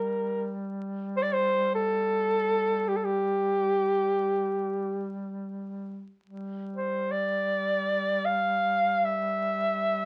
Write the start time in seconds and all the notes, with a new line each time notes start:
Already playing: G3 A#4
1.17 C5
1.22 D5
1.33 C5
1.75 A4
2.88 G4
2.96 A4
3.04 G4
6.24 G3
6.76 C5
7.11 D5
8.25 F5
9.04 E5